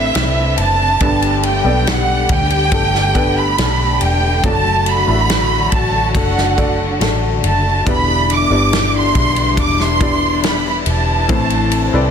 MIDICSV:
0, 0, Header, 1, 8, 480
1, 0, Start_track
1, 0, Key_signature, 1, "minor"
1, 0, Tempo, 857143
1, 566, Time_signature, 4, 2, 24, 8
1, 6780, End_track
2, 0, Start_track
2, 0, Title_t, "Violin section"
2, 0, Program_c, 0, 48
2, 0, Note_on_c, 0, 76, 100
2, 332, Note_off_c, 0, 76, 0
2, 334, Note_on_c, 0, 81, 102
2, 787, Note_off_c, 0, 81, 0
2, 815, Note_on_c, 0, 79, 84
2, 1034, Note_off_c, 0, 79, 0
2, 1052, Note_on_c, 0, 78, 98
2, 1289, Note_off_c, 0, 78, 0
2, 1298, Note_on_c, 0, 79, 103
2, 1891, Note_on_c, 0, 83, 88
2, 1892, Note_off_c, 0, 79, 0
2, 2248, Note_off_c, 0, 83, 0
2, 2254, Note_on_c, 0, 79, 86
2, 2490, Note_off_c, 0, 79, 0
2, 2490, Note_on_c, 0, 81, 106
2, 2727, Note_off_c, 0, 81, 0
2, 2729, Note_on_c, 0, 83, 99
2, 3207, Note_off_c, 0, 83, 0
2, 3207, Note_on_c, 0, 81, 92
2, 3446, Note_off_c, 0, 81, 0
2, 3452, Note_on_c, 0, 78, 75
2, 3906, Note_off_c, 0, 78, 0
2, 4183, Note_on_c, 0, 81, 85
2, 4398, Note_off_c, 0, 81, 0
2, 4423, Note_on_c, 0, 83, 110
2, 4654, Note_off_c, 0, 83, 0
2, 4663, Note_on_c, 0, 86, 97
2, 5014, Note_off_c, 0, 86, 0
2, 5026, Note_on_c, 0, 84, 101
2, 5353, Note_off_c, 0, 84, 0
2, 5379, Note_on_c, 0, 86, 98
2, 5484, Note_off_c, 0, 86, 0
2, 5499, Note_on_c, 0, 84, 102
2, 5852, Note_off_c, 0, 84, 0
2, 5856, Note_on_c, 0, 83, 83
2, 5963, Note_off_c, 0, 83, 0
2, 5979, Note_on_c, 0, 83, 80
2, 6030, Note_off_c, 0, 83, 0
2, 6096, Note_on_c, 0, 81, 80
2, 6780, Note_off_c, 0, 81, 0
2, 6780, End_track
3, 0, Start_track
3, 0, Title_t, "Felt piano"
3, 0, Program_c, 1, 0
3, 0, Control_c, 1, 64, 127
3, 0, Note_on_c, 1, 59, 84
3, 0, Note_on_c, 1, 60, 72
3, 0, Note_on_c, 1, 64, 70
3, 0, Note_on_c, 1, 69, 72
3, 0, Note_on_c, 1, 71, 69
3, 0, Note_on_c, 1, 72, 80
3, 528, Note_off_c, 1, 71, 0
3, 530, Note_off_c, 1, 60, 0
3, 531, Note_off_c, 1, 64, 0
3, 532, Note_off_c, 1, 69, 0
3, 533, Note_off_c, 1, 72, 0
3, 563, Note_off_c, 1, 59, 0
3, 563, Note_on_c, 1, 59, 71
3, 566, Note_on_c, 1, 62, 67
3, 568, Note_on_c, 1, 43, 67
3, 568, Note_on_c, 1, 50, 61
3, 568, Note_on_c, 1, 67, 69
3, 571, Note_on_c, 1, 69, 73
3, 572, Note_on_c, 1, 71, 74
3, 574, Control_c, 1, 64, 0
3, 656, Control_c, 1, 64, 127
3, 906, Note_off_c, 1, 59, 0
3, 908, Note_off_c, 1, 62, 0
3, 909, Note_off_c, 1, 67, 0
3, 910, Note_off_c, 1, 69, 0
3, 910, Note_off_c, 1, 71, 0
3, 919, Note_on_c, 1, 59, 78
3, 922, Note_on_c, 1, 62, 63
3, 924, Note_on_c, 1, 67, 65
3, 926, Note_on_c, 1, 69, 68
3, 930, Note_on_c, 1, 74, 81
3, 1264, Note_off_c, 1, 43, 0
3, 1264, Note_off_c, 1, 50, 0
3, 1720, Note_off_c, 1, 59, 0
3, 1722, Note_off_c, 1, 62, 0
3, 1722, Note_off_c, 1, 67, 0
3, 1724, Note_off_c, 1, 69, 0
3, 1726, Note_off_c, 1, 74, 0
3, 1758, Note_on_c, 1, 59, 77
3, 1760, Note_on_c, 1, 62, 62
3, 1760, Note_on_c, 1, 67, 67
3, 1763, Note_on_c, 1, 69, 64
3, 1766, Note_on_c, 1, 71, 83
3, 2446, Note_off_c, 1, 59, 0
3, 2447, Note_off_c, 1, 62, 0
3, 2447, Note_off_c, 1, 67, 0
3, 2448, Note_off_c, 1, 69, 0
3, 2450, Note_off_c, 1, 71, 0
3, 2486, Note_on_c, 1, 57, 67
3, 2488, Note_on_c, 1, 62, 66
3, 2489, Note_on_c, 1, 65, 50
3, 2490, Note_on_c, 1, 54, 55
3, 2490, Note_on_c, 1, 69, 65
3, 2492, Control_c, 1, 64, 0
3, 2493, Note_on_c, 1, 74, 81
3, 2523, Note_off_c, 1, 65, 0
3, 2523, Note_on_c, 1, 66, 64
3, 2605, Control_c, 1, 64, 127
3, 2828, Note_off_c, 1, 57, 0
3, 2829, Note_off_c, 1, 62, 0
3, 2830, Note_off_c, 1, 69, 0
3, 2831, Note_off_c, 1, 74, 0
3, 2838, Note_on_c, 1, 57, 74
3, 2841, Note_on_c, 1, 62, 60
3, 2842, Note_on_c, 1, 64, 50
3, 2844, Note_on_c, 1, 69, 61
3, 2846, Note_off_c, 1, 66, 0
3, 2847, Note_on_c, 1, 76, 74
3, 2879, Note_on_c, 1, 66, 64
3, 2880, Note_off_c, 1, 64, 0
3, 3185, Note_off_c, 1, 54, 0
3, 3640, Note_off_c, 1, 57, 0
3, 3641, Note_off_c, 1, 62, 0
3, 3642, Note_off_c, 1, 69, 0
3, 3644, Note_off_c, 1, 76, 0
3, 3660, Note_off_c, 1, 66, 0
3, 3677, Note_on_c, 1, 57, 74
3, 3682, Note_on_c, 1, 62, 62
3, 3683, Note_on_c, 1, 66, 67
3, 3686, Note_on_c, 1, 69, 66
3, 3687, Note_on_c, 1, 74, 81
3, 4365, Note_off_c, 1, 57, 0
3, 4368, Note_off_c, 1, 62, 0
3, 4368, Note_off_c, 1, 66, 0
3, 4370, Note_off_c, 1, 69, 0
3, 4370, Note_off_c, 1, 74, 0
3, 4400, Note_on_c, 1, 64, 61
3, 4402, Note_on_c, 1, 62, 69
3, 4404, Note_on_c, 1, 47, 62
3, 4405, Note_on_c, 1, 67, 65
3, 4406, Note_on_c, 1, 74, 76
3, 4407, Note_on_c, 1, 71, 69
3, 4412, Control_c, 1, 64, 0
3, 4495, Control_c, 1, 64, 127
3, 4745, Note_off_c, 1, 62, 0
3, 4745, Note_off_c, 1, 64, 0
3, 4747, Note_off_c, 1, 67, 0
3, 4748, Note_off_c, 1, 71, 0
3, 4748, Note_off_c, 1, 74, 0
3, 4760, Note_on_c, 1, 62, 64
3, 4765, Note_on_c, 1, 64, 60
3, 4765, Note_on_c, 1, 67, 61
3, 4767, Note_on_c, 1, 59, 68
3, 4769, Note_on_c, 1, 74, 73
3, 5102, Note_off_c, 1, 47, 0
3, 5561, Note_off_c, 1, 62, 0
3, 5563, Note_off_c, 1, 64, 0
3, 5563, Note_off_c, 1, 67, 0
3, 5564, Note_off_c, 1, 59, 0
3, 5565, Note_off_c, 1, 74, 0
3, 5603, Note_on_c, 1, 62, 81
3, 5605, Note_on_c, 1, 64, 69
3, 5606, Note_on_c, 1, 67, 71
3, 5610, Note_on_c, 1, 59, 61
3, 5614, Note_on_c, 1, 74, 87
3, 6288, Note_off_c, 1, 62, 0
3, 6289, Note_off_c, 1, 64, 0
3, 6290, Note_off_c, 1, 67, 0
3, 6292, Note_off_c, 1, 59, 0
3, 6294, Note_off_c, 1, 74, 0
3, 6320, Note_on_c, 1, 60, 68
3, 6320, Note_on_c, 1, 64, 66
3, 6322, Note_on_c, 1, 45, 61
3, 6323, Note_on_c, 1, 52, 59
3, 6323, Note_on_c, 1, 69, 66
3, 6325, Note_on_c, 1, 71, 61
3, 6327, Note_on_c, 1, 72, 82
3, 6332, Control_c, 1, 64, 0
3, 6443, Control_c, 1, 64, 127
3, 6664, Note_off_c, 1, 64, 0
3, 6665, Note_off_c, 1, 60, 0
3, 6666, Note_off_c, 1, 69, 0
3, 6667, Note_off_c, 1, 71, 0
3, 6668, Note_off_c, 1, 72, 0
3, 6680, Note_on_c, 1, 60, 87
3, 6683, Note_on_c, 1, 64, 78
3, 6684, Note_on_c, 1, 69, 82
3, 6687, Note_on_c, 1, 71, 78
3, 6690, Note_on_c, 1, 74, 97
3, 6780, Note_off_c, 1, 45, 0
3, 6780, Note_off_c, 1, 52, 0
3, 6780, Note_off_c, 1, 60, 0
3, 6780, Note_off_c, 1, 64, 0
3, 6780, Note_off_c, 1, 69, 0
3, 6780, Note_off_c, 1, 71, 0
3, 6780, Note_off_c, 1, 74, 0
3, 6780, End_track
4, 0, Start_track
4, 0, Title_t, "Nylon-string guitar"
4, 0, Program_c, 2, 24
4, 0, Note_on_c, 2, 45, 81
4, 0, Note_on_c, 2, 60, 66
4, 0, Note_on_c, 2, 64, 60
4, 0, Note_on_c, 2, 71, 63
4, 81, Note_off_c, 2, 60, 0
4, 83, Note_off_c, 2, 64, 0
4, 87, Note_on_c, 2, 60, 61
4, 90, Note_on_c, 2, 64, 65
4, 91, Note_off_c, 2, 71, 0
4, 93, Note_on_c, 2, 71, 68
4, 564, Note_off_c, 2, 45, 0
4, 566, Note_on_c, 2, 55, 84
4, 614, Note_off_c, 2, 60, 0
4, 615, Note_off_c, 2, 64, 0
4, 1047, Note_on_c, 2, 59, 57
4, 1524, Note_off_c, 2, 59, 0
4, 1528, Note_on_c, 2, 62, 61
4, 1530, Note_on_c, 2, 59, 57
4, 1532, Note_off_c, 2, 71, 0
4, 1534, Note_on_c, 2, 69, 63
4, 2001, Note_off_c, 2, 59, 0
4, 2003, Note_off_c, 2, 62, 0
4, 2005, Note_on_c, 2, 62, 62
4, 2008, Note_on_c, 2, 59, 57
4, 2009, Note_off_c, 2, 69, 0
4, 2012, Note_on_c, 2, 69, 63
4, 2481, Note_off_c, 2, 55, 0
4, 2484, Note_on_c, 2, 54, 75
4, 2535, Note_off_c, 2, 59, 0
4, 2969, Note_on_c, 2, 66, 53
4, 3439, Note_off_c, 2, 66, 0
4, 3440, Note_off_c, 2, 62, 0
4, 3442, Note_on_c, 2, 62, 51
4, 3445, Note_on_c, 2, 66, 51
4, 3448, Note_off_c, 2, 69, 0
4, 3450, Note_on_c, 2, 69, 64
4, 3917, Note_off_c, 2, 66, 0
4, 3918, Note_off_c, 2, 62, 0
4, 3920, Note_on_c, 2, 62, 52
4, 3922, Note_off_c, 2, 69, 0
4, 3924, Note_on_c, 2, 66, 59
4, 3929, Note_on_c, 2, 69, 61
4, 4404, Note_on_c, 2, 40, 69
4, 4405, Note_off_c, 2, 54, 0
4, 4453, Note_off_c, 2, 66, 0
4, 4455, Note_off_c, 2, 69, 0
4, 4882, Note_on_c, 2, 59, 59
4, 5359, Note_off_c, 2, 62, 0
4, 5361, Note_on_c, 2, 62, 63
4, 5362, Note_off_c, 2, 59, 0
4, 5365, Note_on_c, 2, 59, 54
4, 5833, Note_off_c, 2, 62, 0
4, 5840, Note_on_c, 2, 62, 59
4, 5843, Note_off_c, 2, 59, 0
4, 5845, Note_on_c, 2, 59, 56
4, 5848, Note_on_c, 2, 71, 68
4, 6324, Note_on_c, 2, 45, 74
4, 6325, Note_off_c, 2, 40, 0
4, 6371, Note_off_c, 2, 62, 0
4, 6780, Note_off_c, 2, 45, 0
4, 6780, Note_off_c, 2, 59, 0
4, 6780, Note_off_c, 2, 71, 0
4, 6780, End_track
5, 0, Start_track
5, 0, Title_t, "String section"
5, 0, Program_c, 3, 48
5, 0, Note_on_c, 3, 48, 75
5, 0, Note_on_c, 3, 57, 70
5, 0, Note_on_c, 3, 62, 65
5, 0, Note_on_c, 3, 64, 78
5, 541, Note_off_c, 3, 64, 0
5, 545, Note_off_c, 3, 57, 0
5, 547, Note_off_c, 3, 48, 0
5, 561, Note_on_c, 3, 67, 85
5, 563, Note_on_c, 3, 57, 73
5, 565, Note_on_c, 3, 50, 84
5, 2462, Note_off_c, 3, 62, 0
5, 2464, Note_off_c, 3, 67, 0
5, 2476, Note_on_c, 3, 66, 80
5, 2477, Note_on_c, 3, 54, 68
5, 4382, Note_off_c, 3, 54, 0
5, 4382, Note_off_c, 3, 57, 0
5, 4382, Note_off_c, 3, 66, 0
5, 4396, Note_on_c, 3, 55, 68
5, 4398, Note_on_c, 3, 62, 72
5, 4399, Note_on_c, 3, 64, 77
5, 6302, Note_off_c, 3, 55, 0
5, 6303, Note_off_c, 3, 50, 0
5, 6319, Note_on_c, 3, 48, 79
5, 6323, Note_on_c, 3, 57, 75
5, 6780, Note_off_c, 3, 48, 0
5, 6780, Note_off_c, 3, 57, 0
5, 6780, Note_off_c, 3, 62, 0
5, 6780, Note_off_c, 3, 64, 0
5, 6780, End_track
6, 0, Start_track
6, 0, Title_t, "French horn section"
6, 0, Program_c, 4, 60
6, 4406, Note_on_c, 4, 47, 89
6, 4406, Note_on_c, 4, 55, 78
6, 4407, Note_on_c, 4, 62, 99
6, 6063, Note_off_c, 4, 47, 0
6, 6063, Note_off_c, 4, 55, 0
6, 6064, Note_off_c, 4, 62, 0
6, 6317, Note_on_c, 4, 60, 96
6, 6319, Note_on_c, 4, 45, 92
6, 6321, Note_on_c, 4, 52, 83
6, 6780, Note_off_c, 4, 45, 0
6, 6780, Note_off_c, 4, 52, 0
6, 6780, Note_off_c, 4, 60, 0
6, 6780, End_track
7, 0, Start_track
7, 0, Title_t, "Fingered electric bass"
7, 0, Program_c, 5, 33
7, 0, Note_on_c, 5, 33, 116
7, 62, Note_off_c, 5, 33, 0
7, 85, Note_on_c, 5, 36, 93
7, 308, Note_off_c, 5, 36, 0
7, 322, Note_on_c, 5, 30, 77
7, 547, Note_off_c, 5, 30, 0
7, 563, Note_on_c, 5, 31, 104
7, 902, Note_off_c, 5, 31, 0
7, 920, Note_on_c, 5, 35, 88
7, 1260, Note_off_c, 5, 35, 0
7, 1286, Note_on_c, 5, 38, 95
7, 1509, Note_off_c, 5, 38, 0
7, 1523, Note_on_c, 5, 31, 106
7, 1982, Note_off_c, 5, 31, 0
7, 2006, Note_on_c, 5, 35, 85
7, 2229, Note_off_c, 5, 35, 0
7, 2245, Note_on_c, 5, 28, 75
7, 2469, Note_off_c, 5, 28, 0
7, 2485, Note_on_c, 5, 30, 98
7, 2823, Note_off_c, 5, 30, 0
7, 2842, Note_on_c, 5, 33, 86
7, 3181, Note_off_c, 5, 33, 0
7, 3204, Note_on_c, 5, 33, 90
7, 3428, Note_off_c, 5, 33, 0
7, 3441, Note_on_c, 5, 30, 100
7, 3901, Note_off_c, 5, 30, 0
7, 3922, Note_on_c, 5, 33, 79
7, 4147, Note_off_c, 5, 33, 0
7, 4160, Note_on_c, 5, 30, 74
7, 4386, Note_off_c, 5, 30, 0
7, 4405, Note_on_c, 5, 28, 97
7, 4743, Note_off_c, 5, 28, 0
7, 4761, Note_on_c, 5, 31, 86
7, 5101, Note_off_c, 5, 31, 0
7, 5126, Note_on_c, 5, 35, 89
7, 5349, Note_off_c, 5, 35, 0
7, 5360, Note_on_c, 5, 28, 90
7, 6060, Note_off_c, 5, 28, 0
7, 6083, Note_on_c, 5, 28, 94
7, 6307, Note_off_c, 5, 28, 0
7, 6323, Note_on_c, 5, 33, 108
7, 6662, Note_off_c, 5, 33, 0
7, 6684, Note_on_c, 5, 36, 93
7, 6780, Note_off_c, 5, 36, 0
7, 6780, End_track
8, 0, Start_track
8, 0, Title_t, "Drums"
8, 84, Note_on_c, 9, 51, 80
8, 89, Note_on_c, 9, 38, 107
8, 140, Note_off_c, 9, 51, 0
8, 145, Note_off_c, 9, 38, 0
8, 322, Note_on_c, 9, 51, 67
8, 378, Note_off_c, 9, 51, 0
8, 562, Note_on_c, 9, 51, 65
8, 565, Note_on_c, 9, 36, 109
8, 618, Note_off_c, 9, 51, 0
8, 621, Note_off_c, 9, 36, 0
8, 685, Note_on_c, 9, 51, 51
8, 741, Note_off_c, 9, 51, 0
8, 803, Note_on_c, 9, 51, 53
8, 859, Note_off_c, 9, 51, 0
8, 1048, Note_on_c, 9, 51, 73
8, 1051, Note_on_c, 9, 38, 111
8, 1104, Note_off_c, 9, 51, 0
8, 1107, Note_off_c, 9, 38, 0
8, 1282, Note_on_c, 9, 51, 65
8, 1285, Note_on_c, 9, 36, 105
8, 1338, Note_off_c, 9, 51, 0
8, 1341, Note_off_c, 9, 36, 0
8, 1402, Note_on_c, 9, 51, 40
8, 1458, Note_off_c, 9, 51, 0
8, 1521, Note_on_c, 9, 51, 73
8, 1522, Note_on_c, 9, 36, 107
8, 1577, Note_off_c, 9, 51, 0
8, 1578, Note_off_c, 9, 36, 0
8, 1651, Note_on_c, 9, 38, 35
8, 1707, Note_off_c, 9, 38, 0
8, 1765, Note_on_c, 9, 36, 88
8, 1765, Note_on_c, 9, 51, 53
8, 1821, Note_off_c, 9, 36, 0
8, 1821, Note_off_c, 9, 51, 0
8, 2006, Note_on_c, 9, 51, 82
8, 2011, Note_on_c, 9, 38, 100
8, 2062, Note_off_c, 9, 51, 0
8, 2067, Note_off_c, 9, 38, 0
8, 2244, Note_on_c, 9, 51, 66
8, 2300, Note_off_c, 9, 51, 0
8, 2484, Note_on_c, 9, 36, 108
8, 2484, Note_on_c, 9, 51, 68
8, 2540, Note_off_c, 9, 36, 0
8, 2540, Note_off_c, 9, 51, 0
8, 2722, Note_on_c, 9, 51, 65
8, 2778, Note_off_c, 9, 51, 0
8, 2966, Note_on_c, 9, 51, 71
8, 2968, Note_on_c, 9, 38, 103
8, 3022, Note_off_c, 9, 51, 0
8, 3024, Note_off_c, 9, 38, 0
8, 3203, Note_on_c, 9, 51, 66
8, 3205, Note_on_c, 9, 36, 100
8, 3259, Note_off_c, 9, 51, 0
8, 3261, Note_off_c, 9, 36, 0
8, 3442, Note_on_c, 9, 36, 101
8, 3443, Note_on_c, 9, 51, 78
8, 3498, Note_off_c, 9, 36, 0
8, 3499, Note_off_c, 9, 51, 0
8, 3571, Note_on_c, 9, 38, 35
8, 3627, Note_off_c, 9, 38, 0
8, 3684, Note_on_c, 9, 36, 87
8, 3686, Note_on_c, 9, 51, 51
8, 3740, Note_off_c, 9, 36, 0
8, 3742, Note_off_c, 9, 51, 0
8, 3926, Note_on_c, 9, 51, 74
8, 3931, Note_on_c, 9, 38, 101
8, 3982, Note_off_c, 9, 51, 0
8, 3987, Note_off_c, 9, 38, 0
8, 4165, Note_on_c, 9, 51, 66
8, 4221, Note_off_c, 9, 51, 0
8, 4405, Note_on_c, 9, 36, 104
8, 4405, Note_on_c, 9, 51, 64
8, 4461, Note_off_c, 9, 36, 0
8, 4461, Note_off_c, 9, 51, 0
8, 4647, Note_on_c, 9, 51, 62
8, 4703, Note_off_c, 9, 51, 0
8, 4888, Note_on_c, 9, 51, 73
8, 4891, Note_on_c, 9, 38, 108
8, 4944, Note_off_c, 9, 51, 0
8, 4947, Note_off_c, 9, 38, 0
8, 5124, Note_on_c, 9, 51, 60
8, 5125, Note_on_c, 9, 36, 94
8, 5180, Note_off_c, 9, 51, 0
8, 5181, Note_off_c, 9, 36, 0
8, 5243, Note_on_c, 9, 51, 47
8, 5299, Note_off_c, 9, 51, 0
8, 5361, Note_on_c, 9, 36, 102
8, 5361, Note_on_c, 9, 51, 79
8, 5417, Note_off_c, 9, 36, 0
8, 5417, Note_off_c, 9, 51, 0
8, 5489, Note_on_c, 9, 38, 36
8, 5545, Note_off_c, 9, 38, 0
8, 5603, Note_on_c, 9, 36, 95
8, 5603, Note_on_c, 9, 51, 52
8, 5659, Note_off_c, 9, 36, 0
8, 5659, Note_off_c, 9, 51, 0
8, 5843, Note_on_c, 9, 51, 86
8, 5849, Note_on_c, 9, 38, 100
8, 5899, Note_off_c, 9, 51, 0
8, 5905, Note_off_c, 9, 38, 0
8, 6081, Note_on_c, 9, 51, 63
8, 6137, Note_off_c, 9, 51, 0
8, 6322, Note_on_c, 9, 51, 64
8, 6324, Note_on_c, 9, 36, 115
8, 6378, Note_off_c, 9, 51, 0
8, 6380, Note_off_c, 9, 36, 0
8, 6441, Note_on_c, 9, 51, 51
8, 6497, Note_off_c, 9, 51, 0
8, 6560, Note_on_c, 9, 51, 65
8, 6616, Note_off_c, 9, 51, 0
8, 6780, End_track
0, 0, End_of_file